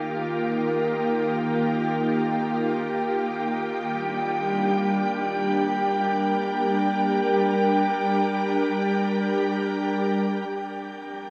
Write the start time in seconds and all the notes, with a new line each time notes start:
Already playing: D#3 A#3 F4 G4 G5
3.83 G3
3.94 D4
5.31 A#4
10.47 F3 G5
10.67 C4
11.17 G#4